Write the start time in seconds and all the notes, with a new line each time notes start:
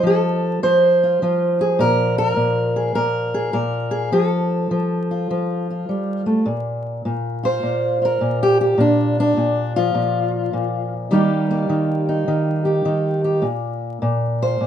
Already playing: D#5
0.03 F3 A4
0.63 F3 C5
1.03 F4
1.22 F3 F4
1.61 G#4
1.79 A#2 A#4
2.18 A#4
2.36 A#2
2.76 G#4
2.95 A#2 A#4
3.34 G#4
3.53 A#2 A#4
3.91 G#4
4.12 F3 A4
4.71 F3
5.11 F4
5.30 F3
5.70 F4
5.89 G3
6.26 A3
6.46 A#2
7.05 A#2
7.43 F4 C5
7.63 A#2
8.02 F4 A#4
8.21 A#2
8.43 G4
8.78 A#2 D4
9.20 D4
9.37 A#2
9.76 F3 F4
9.94 A#2
10.53 A#2
11.11 D#3 G3 A#3 D#4 G4
11.51 A#3
11.69 D#3
12.09 D#4
12.28 D#3
12.65 G4
12.85 D#3 D#4
13.24 G4
13.42 A#2
14.02 A#2
14.42 F4 C5
14.61 A#2